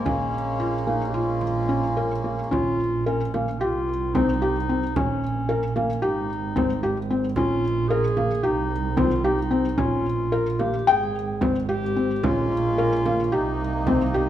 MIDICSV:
0, 0, Header, 1, 6, 480
1, 0, Start_track
1, 0, Tempo, 546448
1, 51, Time_signature, 9, 3, 24, 8
1, 3172, Tempo, 535714
1, 7972, Tempo, 543478
1, 12675, End_track
2, 0, Start_track
2, 0, Title_t, "Clarinet"
2, 0, Program_c, 0, 71
2, 53, Note_on_c, 0, 61, 96
2, 765, Note_on_c, 0, 63, 79
2, 778, Note_off_c, 0, 61, 0
2, 946, Note_on_c, 0, 67, 62
2, 960, Note_off_c, 0, 63, 0
2, 1004, Note_on_c, 0, 65, 78
2, 1017, Note_off_c, 0, 67, 0
2, 1974, Note_off_c, 0, 65, 0
2, 2201, Note_on_c, 0, 65, 98
2, 2653, Note_off_c, 0, 65, 0
2, 2693, Note_on_c, 0, 61, 82
2, 2915, Note_off_c, 0, 61, 0
2, 2937, Note_on_c, 0, 61, 80
2, 3153, Note_on_c, 0, 65, 97
2, 3166, Note_off_c, 0, 61, 0
2, 3645, Note_on_c, 0, 63, 93
2, 3658, Note_off_c, 0, 65, 0
2, 4380, Note_on_c, 0, 61, 90
2, 4393, Note_off_c, 0, 63, 0
2, 5089, Note_off_c, 0, 61, 0
2, 5095, Note_on_c, 0, 61, 75
2, 5327, Note_on_c, 0, 63, 84
2, 5341, Note_off_c, 0, 61, 0
2, 6291, Note_off_c, 0, 63, 0
2, 6530, Note_on_c, 0, 65, 96
2, 6999, Note_on_c, 0, 68, 106
2, 7013, Note_off_c, 0, 65, 0
2, 7496, Note_on_c, 0, 63, 92
2, 7509, Note_off_c, 0, 68, 0
2, 7984, Note_on_c, 0, 65, 96
2, 7997, Note_off_c, 0, 63, 0
2, 8214, Note_on_c, 0, 63, 89
2, 8227, Note_off_c, 0, 65, 0
2, 8691, Note_off_c, 0, 63, 0
2, 8710, Note_on_c, 0, 65, 96
2, 9414, Note_on_c, 0, 67, 84
2, 9427, Note_off_c, 0, 65, 0
2, 9664, Note_on_c, 0, 68, 80
2, 9678, Note_off_c, 0, 67, 0
2, 10142, Note_off_c, 0, 68, 0
2, 10387, Note_on_c, 0, 67, 105
2, 10868, Note_on_c, 0, 65, 105
2, 10881, Note_off_c, 0, 67, 0
2, 11829, Note_on_c, 0, 63, 90
2, 11842, Note_off_c, 0, 65, 0
2, 12675, Note_off_c, 0, 63, 0
2, 12675, End_track
3, 0, Start_track
3, 0, Title_t, "Felt piano"
3, 0, Program_c, 1, 0
3, 48, Note_on_c, 1, 61, 80
3, 290, Note_off_c, 1, 61, 0
3, 525, Note_on_c, 1, 65, 76
3, 647, Note_off_c, 1, 65, 0
3, 765, Note_on_c, 1, 58, 65
3, 887, Note_off_c, 1, 58, 0
3, 1000, Note_on_c, 1, 65, 81
3, 1247, Note_off_c, 1, 65, 0
3, 1482, Note_on_c, 1, 61, 75
3, 1607, Note_off_c, 1, 61, 0
3, 1729, Note_on_c, 1, 70, 68
3, 1853, Note_off_c, 1, 70, 0
3, 1968, Note_on_c, 1, 58, 58
3, 2092, Note_off_c, 1, 58, 0
3, 2206, Note_on_c, 1, 61, 80
3, 2451, Note_off_c, 1, 61, 0
3, 2691, Note_on_c, 1, 70, 71
3, 2812, Note_off_c, 1, 70, 0
3, 2934, Note_on_c, 1, 58, 68
3, 3054, Note_off_c, 1, 58, 0
3, 3168, Note_on_c, 1, 67, 84
3, 3414, Note_off_c, 1, 67, 0
3, 3655, Note_on_c, 1, 60, 82
3, 3777, Note_off_c, 1, 60, 0
3, 3895, Note_on_c, 1, 67, 80
3, 4017, Note_off_c, 1, 67, 0
3, 4141, Note_on_c, 1, 60, 67
3, 4261, Note_off_c, 1, 60, 0
3, 4382, Note_on_c, 1, 61, 81
3, 4624, Note_off_c, 1, 61, 0
3, 4854, Note_on_c, 1, 70, 82
3, 4976, Note_off_c, 1, 70, 0
3, 5096, Note_on_c, 1, 58, 71
3, 5216, Note_off_c, 1, 58, 0
3, 5331, Note_on_c, 1, 67, 90
3, 5574, Note_off_c, 1, 67, 0
3, 5812, Note_on_c, 1, 60, 82
3, 5934, Note_off_c, 1, 60, 0
3, 6057, Note_on_c, 1, 67, 83
3, 6177, Note_off_c, 1, 67, 0
3, 6302, Note_on_c, 1, 60, 71
3, 6421, Note_off_c, 1, 60, 0
3, 6540, Note_on_c, 1, 61, 85
3, 6780, Note_off_c, 1, 61, 0
3, 7019, Note_on_c, 1, 70, 85
3, 7138, Note_off_c, 1, 70, 0
3, 7254, Note_on_c, 1, 58, 71
3, 7375, Note_off_c, 1, 58, 0
3, 7493, Note_on_c, 1, 67, 88
3, 7737, Note_off_c, 1, 67, 0
3, 7973, Note_on_c, 1, 60, 88
3, 8094, Note_off_c, 1, 60, 0
3, 8215, Note_on_c, 1, 67, 87
3, 8335, Note_off_c, 1, 67, 0
3, 8448, Note_on_c, 1, 60, 74
3, 8570, Note_off_c, 1, 60, 0
3, 8685, Note_on_c, 1, 61, 93
3, 8930, Note_off_c, 1, 61, 0
3, 9167, Note_on_c, 1, 70, 81
3, 9289, Note_off_c, 1, 70, 0
3, 9406, Note_on_c, 1, 58, 67
3, 9529, Note_off_c, 1, 58, 0
3, 9654, Note_on_c, 1, 79, 95
3, 9898, Note_off_c, 1, 79, 0
3, 10129, Note_on_c, 1, 60, 77
3, 10253, Note_off_c, 1, 60, 0
3, 10373, Note_on_c, 1, 67, 78
3, 10496, Note_off_c, 1, 67, 0
3, 10618, Note_on_c, 1, 60, 64
3, 10740, Note_off_c, 1, 60, 0
3, 10860, Note_on_c, 1, 61, 83
3, 11103, Note_off_c, 1, 61, 0
3, 11341, Note_on_c, 1, 70, 79
3, 11461, Note_off_c, 1, 70, 0
3, 11585, Note_on_c, 1, 58, 69
3, 11703, Note_off_c, 1, 58, 0
3, 11817, Note_on_c, 1, 67, 89
3, 12058, Note_off_c, 1, 67, 0
3, 12307, Note_on_c, 1, 60, 83
3, 12425, Note_off_c, 1, 60, 0
3, 12542, Note_on_c, 1, 67, 87
3, 12660, Note_off_c, 1, 67, 0
3, 12675, End_track
4, 0, Start_track
4, 0, Title_t, "Harmonium"
4, 0, Program_c, 2, 20
4, 0, Note_on_c, 2, 56, 72
4, 47, Note_on_c, 2, 58, 64
4, 48, Note_on_c, 2, 61, 84
4, 2187, Note_off_c, 2, 56, 0
4, 2193, Note_off_c, 2, 58, 0
4, 2194, Note_off_c, 2, 61, 0
4, 10849, Note_on_c, 2, 56, 69
4, 10850, Note_on_c, 2, 58, 67
4, 10856, Note_on_c, 2, 61, 78
4, 11802, Note_off_c, 2, 56, 0
4, 11802, Note_on_c, 2, 48, 63
4, 11805, Note_off_c, 2, 61, 0
4, 11810, Note_on_c, 2, 63, 67
4, 12675, Note_off_c, 2, 48, 0
4, 12675, Note_off_c, 2, 58, 0
4, 12675, Note_off_c, 2, 63, 0
4, 12675, End_track
5, 0, Start_track
5, 0, Title_t, "Double bass"
5, 0, Program_c, 3, 43
5, 50, Note_on_c, 3, 34, 82
5, 2181, Note_off_c, 3, 34, 0
5, 2212, Note_on_c, 3, 34, 77
5, 3168, Note_on_c, 3, 36, 82
5, 3181, Note_off_c, 3, 34, 0
5, 4372, Note_on_c, 3, 34, 81
5, 4385, Note_off_c, 3, 36, 0
5, 5331, Note_on_c, 3, 32, 82
5, 5344, Note_off_c, 3, 34, 0
5, 6521, Note_on_c, 3, 34, 90
5, 6535, Note_off_c, 3, 32, 0
5, 7492, Note_on_c, 3, 36, 82
5, 7505, Note_off_c, 3, 34, 0
5, 8693, Note_on_c, 3, 34, 81
5, 8706, Note_off_c, 3, 36, 0
5, 9652, Note_on_c, 3, 32, 82
5, 9665, Note_off_c, 3, 34, 0
5, 10859, Note_on_c, 3, 34, 84
5, 10873, Note_off_c, 3, 32, 0
5, 11821, Note_on_c, 3, 36, 85
5, 11834, Note_off_c, 3, 34, 0
5, 12675, Note_off_c, 3, 36, 0
5, 12675, End_track
6, 0, Start_track
6, 0, Title_t, "Frame drum"
6, 53, Note_on_c, 9, 64, 60
6, 141, Note_off_c, 9, 64, 0
6, 528, Note_on_c, 9, 64, 20
6, 616, Note_off_c, 9, 64, 0
6, 1010, Note_on_c, 9, 64, 19
6, 1098, Note_off_c, 9, 64, 0
6, 1241, Note_on_c, 9, 64, 48
6, 1329, Note_off_c, 9, 64, 0
6, 1739, Note_on_c, 9, 64, 18
6, 1827, Note_off_c, 9, 64, 0
6, 2218, Note_on_c, 9, 64, 61
6, 2306, Note_off_c, 9, 64, 0
6, 2935, Note_on_c, 9, 64, 49
6, 3022, Note_off_c, 9, 64, 0
6, 3653, Note_on_c, 9, 64, 67
6, 3743, Note_off_c, 9, 64, 0
6, 4382, Note_on_c, 9, 64, 70
6, 4471, Note_off_c, 9, 64, 0
6, 5102, Note_on_c, 9, 64, 48
6, 5192, Note_off_c, 9, 64, 0
6, 5820, Note_on_c, 9, 64, 66
6, 5910, Note_off_c, 9, 64, 0
6, 6530, Note_on_c, 9, 64, 61
6, 6620, Note_off_c, 9, 64, 0
6, 7257, Note_on_c, 9, 64, 49
6, 7347, Note_off_c, 9, 64, 0
6, 7977, Note_on_c, 9, 64, 67
6, 8065, Note_off_c, 9, 64, 0
6, 8687, Note_on_c, 9, 64, 61
6, 8775, Note_off_c, 9, 64, 0
6, 9410, Note_on_c, 9, 64, 53
6, 9498, Note_off_c, 9, 64, 0
6, 10134, Note_on_c, 9, 64, 68
6, 10223, Note_off_c, 9, 64, 0
6, 10383, Note_on_c, 9, 64, 21
6, 10471, Note_off_c, 9, 64, 0
6, 10620, Note_on_c, 9, 64, 22
6, 10708, Note_off_c, 9, 64, 0
6, 10857, Note_on_c, 9, 64, 70
6, 10945, Note_off_c, 9, 64, 0
6, 11583, Note_on_c, 9, 64, 54
6, 11671, Note_off_c, 9, 64, 0
6, 12299, Note_on_c, 9, 64, 64
6, 12387, Note_off_c, 9, 64, 0
6, 12675, End_track
0, 0, End_of_file